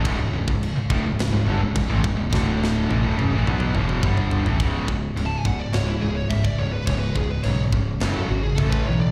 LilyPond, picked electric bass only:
\new Staff \with { instrumentName = "Picked electric bass" } { \clef bass \time 4/4 \key cis \phrygian \tempo 4 = 106 cis,,16 cis,,16 cis,,16 cis,,8 r16 d,,16 cis,,8 cis,,16 g,,16 cis,,16 cis,,16 a,,16 cis,,16 cis,,16 | d,,4 a,,16 d,,16 fis,,16 a,,16 b,,8 e,,8 g,,8. a,,16 | cis,,8 cis,,8 cis,,8 cis,,8 cis,,8 cis,,8 cis,,8 cis,,8 | cis,,8 cis,,8 b,,8 cis,,8 fis,,8 gis,,8 a,,8 b,,8 | }